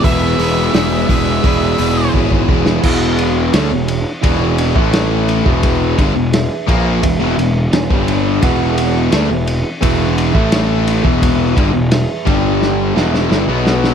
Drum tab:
CC |----------------|x---------------|----------------|----------------|
RD |----------------|--x-x-x-x-x-x-x-|x-x-x-x-x-x-x-x-|x-x-x-x-x-x-x-x-|
HH |o-o-o-o-o-o-----|----------------|----------------|----------------|
SD |----o----------o|----o-------o---|----o-------o---|----o-------o---|
BD |o-----o-o---ooo-|o-------o--o---o|o-o---o-o----o--|o-------o--o---o|

CC |----------------|
RD |x-x-x-x---------|
HH |----------------|
SD |----o---o-ooo-oo|
BD |o-o---o---------|